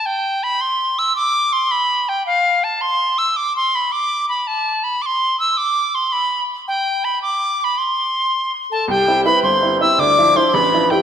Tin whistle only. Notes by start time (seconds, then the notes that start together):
0.06 G5
0.43 B5
0.61 C6
0.99 E6
1.16 D6
1.53 C6
1.71 B5
2.09 G5
2.27 F5
2.64 A5
2.81 C6
3.18 E6
3.37 D6
3.56 C6
3.75 B5
3.92 D6
4.29 B5
4.47 A5
4.84 B5
5.02 D6
5.06 C6
5.40 E6
5.57 D6
5.95 C6
6.12 B5
6.68 G5
7.04 B5
7.22 D6
7.59 D6
7.64 B5
7.78 C6
8.72 A5
8.90 G5
9.25 B5
9.43 C6
9.81 E6
10.00 D6
10.36 C6
10.54 B5
10.90 G5